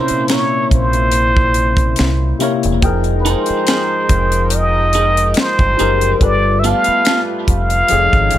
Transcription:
Already playing: analog synth pad A#2 A#3 E4, tine electric piano C3 A#3 C4 C#4 E4 C#5, clean electric guitar C#4 E4 A#4, muted trumpet C5
0.08 muted fingered electric bass stroke, closed hi-hat
0.28 clean electric guitar C#4 E4 A#4, finger snap, snare, closed hi-hat
0.33 muted trumpet C#5
0.71 fingered electric bass A#1, muted trumpet C5, kick, closed hi-hat
0.93 closed hi-hat
1.12 closed hi-hat
1.37 kick
1.54 closed hi-hat
1.77 kick, closed hi-hat
1.96 finger snap, snare, closed hi-hat
2.00 fingered electric bass C2
2.39 tine electric piano C3 A#3 E4, clean electric guitar C#4 E4 A#4, closed hi-hat
2.43 tine electric piano C#5
2.63 fingered electric bass E1, closed hi-hat
2.81 fingered electric bass F1, tine electric piano F3 D#4 G#4 G5, analog synth pad F3 G#3 D#4 A#4 G5, kick, closed hi-hat
2.86 tine electric piano A#4
3.04 closed hi-hat
3.21 muted trumpet B4
3.25 clean electric guitar D#4 G#4 A#4, closed hi-hat
3.30 muted trumpet C5
3.46 closed hi-hat
3.50 muted fingered electric bass stroke
3.67 clean electric guitar D#4 G#4 A#4, finger snap, snare, closed hi-hat
4.09 fingered electric bass F1, kick, closed hi-hat
4.32 closed hi-hat
4.50 closed hi-hat
4.56 muted trumpet D#5
4.93 clean electric guitar D#4 G#4 A#4, closed hi-hat
5.17 closed hi-hat
5.34 finger snap, snare, closed hi-hat
5.40 muted trumpet C5
5.59 fingered electric bass G1, kick, closed hi-hat
5.77 tine electric piano F3 D#4 G4 G#4, clean electric guitar D#4 G#4 A#4, closed hi-hat
5.81 fingered electric bass F#1, tine electric piano A#4
6.01 closed hi-hat
6.19 fingered electric bass G1, tine electric piano G3 F4 A4, analog synth pad G3 A3 F4 B4, kick, closed hi-hat
6.23 tine electric piano B4, muted trumpet D5
6.59 muted trumpet E5
6.64 clean electric guitar B3 F4 A4, muted trumpet F5, closed hi-hat
6.84 muted fingered electric bass stroke, closed hi-hat
7.05 clean electric guitar B3 F4 A4, finger snap, snare, closed hi-hat
7.48 fingered electric bass F1, muted trumpet F5, kick, closed hi-hat
7.70 closed hi-hat
7.88 fingered electric bass F1, tine electric piano F3 D#4 G#4 A4, analog synth pad F3 C#4 D#4 G#5, closed hi-hat
7.93 tine electric piano C#5
8.13 fingered electric bass G#1, kick, closed hi-hat
8.31 fingered electric bass A1, closed hi-hat

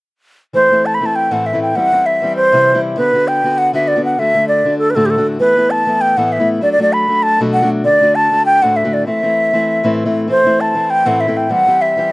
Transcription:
0.53 steel-string acoustic guitar E3 A3 C4 E4, flute C5
0.70 steel-string acoustic guitar E3 A3 C4 E4
0.86 flute A5
0.94 flute B5
1.00 steel-string acoustic guitar E3 A3 C4 E4
1.06 flute A5
1.16 flute G5
1.31 steel-string acoustic guitar A2 E3 A3 C4 E4, flute F#5
1.46 flute E5
1.53 steel-string acoustic guitar A2 E3 A3 C4 E4
1.62 flute G5
1.75 steel-string acoustic guitar E3 G3 C4 E4, flute F#5
1.92 steel-string acoustic guitar E3 G3 C4 E4
2.06 flute E5
2.22 steel-string acoustic guitar E3 G3 C4 E4
2.36 flute C5
2.52 steel-string acoustic guitar C3 E3 G3 C4 E4
2.75 steel-string acoustic guitar C3 E3 G3 C4 E4
2.96 steel-string acoustic guitar D3 B3 D4 F#4, flute B4
3.13 steel-string acoustic guitar D3 B3 D4 F#4
3.28 flute G5
3.43 steel-string acoustic guitar D3 B3 D4 F#4
3.58 flute F#5
3.73 steel-string acoustic guitar D3 B3 D4 F#4, flute E5
3.88 flute D5
3.96 steel-string acoustic guitar D3 B3 D4 F#4
4.05 flute F#5
4.18 steel-string acoustic guitar D3 A3 D4 F#4, flute E5
4.34 steel-string acoustic guitar D3 A3 D4 F#4
4.48 flute D5
4.65 steel-string acoustic guitar D3 A3 D4 F#4
4.79 flute A4
4.90 flute B4
4.95 steel-string acoustic guitar D2 A2 D3 A3 D4 F#4, flute A4
5.06 flute G4
5.10 flute A4
5.18 steel-string acoustic guitar D2 A2 D3 A3 D4 F#4
5.39 steel-string acoustic guitar E3 A3 B3 E4, flute B4
5.56 steel-string acoustic guitar E3 A3 B3 E4
5.71 flute A5
5.86 steel-string acoustic guitar E3 A3 B3 E4
6.01 flute G5
6.17 steel-string acoustic guitar A2 E3 A3 B3 E4, flute F#5
6.32 flute E5
6.40 steel-string acoustic guitar A2 E3 A3 B3 E4
6.61 steel-string acoustic guitar F#3 A3 D4 F#4, flute D5
6.72 flute D5
6.78 steel-string acoustic guitar F#3 A3 D4 F#4
6.82 flute D5
6.93 flute B5
7.08 steel-string acoustic guitar F#3 A3 D4 F#4
7.23 flute A5
7.40 steel-string acoustic guitar B2 F#3 A3 D4 F#4
7.53 flute F#5
7.62 steel-string acoustic guitar B2 F#3 A3 D4 F#4
7.84 steel-string acoustic guitar D3 A3 D4 F#4, flute D5
8.00 steel-string acoustic guitar D3 A3 D4 F#4
8.15 flute A5
8.30 steel-string acoustic guitar D3 A3 D4 F#4
8.46 flute G5
8.62 steel-string acoustic guitar D2 A2 D3 A3 D4 F#4, flute F#5
8.76 flute E5
8.84 steel-string acoustic guitar D2 A2 D3 A3 D4 F#4
8.93 flute D5
9.06 steel-string acoustic guitar E3 A3 C4 E4, flute E5
9.22 steel-string acoustic guitar E3 A3 C4 E4
9.53 steel-string acoustic guitar E3 A3 C4 E4
9.83 steel-string acoustic guitar A2 E3 A3 C4 E4
10.05 steel-string acoustic guitar A2 E3 A3 C4 E4
10.28 steel-string acoustic guitar E3 A3 C4 E4, flute C5
10.44 steel-string acoustic guitar E3 A3 C4 E4
10.61 flute A5
10.74 steel-string acoustic guitar E3 A3 C4 E4
10.90 flute G5
11.05 steel-string acoustic guitar A2 E3 A3 C4 E4, flute F#5
11.20 flute E5
11.27 steel-string acoustic guitar A2 E3 A3 C4 E4
11.37 flute G5
11.49 steel-string acoustic guitar E3 G3 C4 G4, flute F#5
11.66 steel-string acoustic guitar E3 G3 C4 G4
11.81 flute E5
11.96 steel-string acoustic guitar E3 G3 C4 G4

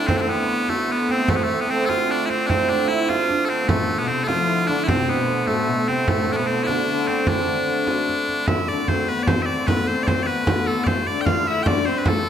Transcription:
Already playing: hurdy-gurdy D3 A3, hammered dulcimer A3 D4 E4 D5
0.07 bagpipes C4, hammered dulcimer C4, frame drum
0.18 bagpipes C4 D4
0.27 hammered dulcimer B3, bagpipes B3
0.68 hammered dulcimer A3, bagpipes A3, frame drum
0.89 hammered dulcimer B3, bagpipes B3
1.09 hammered dulcimer C4, bagpipes C4, frame drum
1.28 bagpipes A3, hammered dulcimer A3, frame drum
1.36 bagpipes B3
1.43 hammered dulcimer A3, bagpipes A3
1.61 bagpipes B3
1.69 hammered dulcimer C4, bagpipes C4
1.86 bagpipes F4 A4, hammered dulcimer F4
1.90 frame drum
2.08 hammered dulcimer D4, bagpipes D4
2.26 hammered dulcimer C4, bagpipes C4 E4, frame drum
2.46 hammered dulcimer C4, bagpipes C4 D4, frame drum
2.63 hammered dulcimer E4
2.69 hammered dulcimer D4, bagpipes D4, frame drum
2.84 hammered dulcimer E4 F4, bagpipes E4
3.08 hammered dulcimer F4, bagpipes F4, frame drum
3.29 hammered dulcimer D4, frame drum
3.45 bagpipes A4
3.49 bagpipes C4
3.62 hammered dulcimer B3
3.68 viola da gamba A2, hurdy-gurdy D3 A3, bagpipes A3, hammered dulcimer A3, frame drum
3.98 viola da gamba B2, hammered dulcimer B3, bagpipes B3
4.07 viola da gamba C3, bagpipes C4
4.24 hammered dulcimer F4, bagpipes F4 A4
4.29 viola da gamba F3, frame drum
4.47 hammered dulcimer E4
4.67 viola da gamba D3, bagpipes D4, hammered dulcimer D4, frame drum
4.84 hammered dulcimer C4, bagpipes E4
4.88 viola da gamba C3, bagpipes C4, frame drum
5.08 viola da gamba B2, hammered dulcimer B3, bagpipes B3
5.29 hammered dulcimer B3
5.47 viola da gamba A2, bagpipes A3, hammered dulcimer A3, frame drum
5.68 viola da gamba B2
5.88 viola da gamba C3, bagpipes C4, hammered dulcimer C4, frame drum
6.08 viola da gamba A2, bagpipes A3, hammered dulcimer A3, frame drum
6.16 hammered dulcimer A3
6.24 hammered dulcimer A3
6.32 bagpipes D4
6.37 viola da gamba B2, bagpipes B3, hammered dulcimer B3
6.46 bagpipes C4
6.64 viola da gamba D3, bagpipes D4 E4
6.68 hammered dulcimer D4, frame drum
6.88 viola da gamba D3
7.08 bagpipes C4, hammered dulcimer C4, frame drum
7.27 viola da gamba D3, bagpipes D4, hammered dulcimer D4, frame drum
7.87 frame drum
8.09 frame drum
8.28 frame drum
8.47 hurdy-gurdy D3 A3, viola da gamba E4, bagpipes E5, frame drum
8.68 viola da gamba D4, bagpipes D5, frame drum
8.88 viola da gamba C4, bagpipes C5, frame drum
9.08 viola da gamba B3, bagpipes B4
9.23 bagpipes D5
9.27 viola da gamba C4, bagpipes C5, frame drum
9.42 bagpipes D5 E5
9.47 frame drum
9.67 viola da gamba B3, bagpipes B4, frame drum
9.87 viola da gamba C4, bagpipes C5, frame drum
10.03 bagpipes C5 D5
10.08 frame drum
10.23 bagpipes B4 D5
10.27 viola da gamba B3
10.47 viola da gamba B3, frame drum
10.67 bagpipes A4, frame drum
10.84 bagpipes C5 D5, frame drum
10.88 viola da gamba C4
11.07 viola da gamba D4, bagpipes D5, frame drum
11.21 bagpipes G5
11.26 viola da gamba F4, bagpipes F5, frame drum
11.47 viola da gamba E4, bagpipes E5
11.63 viola da gamba D4, bagpipes G5, frame drum
11.67 bagpipes D5
11.85 viola da gamba C4, bagpipes C5, frame drum
11.98 bagpipes B4
12.06 viola da gamba A3, bagpipes A4, frame drum
12.25 viola da gamba A3, frame drum

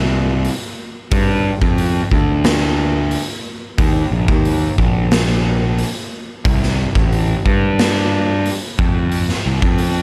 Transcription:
Already playing: picked electric bass C2
0.45 open hi-hat
1.11 picked electric bass G2, kick, open hi-hat
1.62 picked electric bass F2, kick
1.78 open hi-hat
2.11 picked electric bass D2, kick
2.44 snare, open hi-hat
3.11 open hi-hat
3.78 picked electric bass D#2, kick, open hi-hat
4.12 picked electric bass A#1
4.28 picked electric bass D#2, kick
4.45 open hi-hat
4.78 picked electric bass A#1, kick
5.11 snare, open hi-hat
5.78 open hi-hat
6.45 picked electric bass C2, kick, open hi-hat
6.63 snare
6.95 picked electric bass A1, kick
7.12 open hi-hat
7.46 picked electric bass G2, kick
7.79 snare, open hi-hat
8.46 open hi-hat
8.79 picked electric bass F2, kick
9.12 open hi-hat
9.29 snare
9.46 picked electric bass C2
9.62 picked electric bass F2, kick
9.78 open hi-hat

